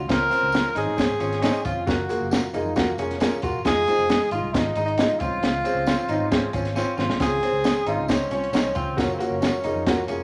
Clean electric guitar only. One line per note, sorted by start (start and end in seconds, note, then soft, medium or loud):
0.30 0.49 C4 medium
0.75 0.94 D#4 medium
1.20 1.39 C#4 medium
1.42 1.61 C#4 medium
1.65 1.84 F4 medium
2.10 2.28 A#3 medium
2.54 2.73 D#4 medium
2.99 3.17 C#4 medium
3.21 3.39 C#4 medium
3.43 3.61 F4 medium
3.88 4.06 C4 medium
4.32 4.50 F4 medium
4.77 4.95 D#4 medium
4.98 5.17 D#4 medium
5.20 5.39 F4 medium
5.64 5.83 C4 medium
6.09 6.28 D#4 medium
6.53 6.72 C#4 medium
6.75 6.94 C#4 medium
6.97 7.16 F4 medium
7.43 7.61 C4 medium
7.87 8.05 D#4 medium
8.32 8.50 C#4 medium
8.54 8.72 C#4 medium
8.75 8.94 F4 medium
9.19 9.38 A#3 medium
9.64 9.83 D#4 medium
10.08 10.23 C#4 medium